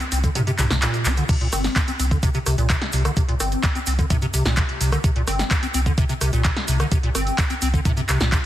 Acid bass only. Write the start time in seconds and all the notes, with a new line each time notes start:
0.00 C4
0.12 C4
0.24 D3
0.35 C3
0.47 C3
0.59 C3
0.71 C3
0.82 A#2
1.06 D#4
1.17 D3
1.29 C3
1.41 A#2
1.53 C4
1.76 A#3
1.88 C4
1.99 C4
2.11 D3
2.23 C3
2.35 C3
2.46 C3
2.58 A#2
2.70 C3
2.93 C3
3.05 D3
3.17 C3
3.28 A#2
3.40 C4
3.63 A#3
3.75 C4
3.87 C4
3.99 D3
4.10 C3
4.22 C3
4.34 C3
4.45 A#2
4.57 C3
4.81 C3
4.92 D3
5.04 C3
5.16 A#2
5.27 C4
5.51 A#3
5.63 C4
5.74 C4
5.86 D3
5.98 C3
6.09 C3
6.21 C3
6.33 A#2
6.45 C3
6.68 C3
6.80 D3
6.91 C3
7.03 A#2
7.15 C4
7.38 A#3
7.50 C4
7.62 C4
7.74 D3
7.85 C3
7.97 C3
8.09 C3
8.20 A#2
8.32 C3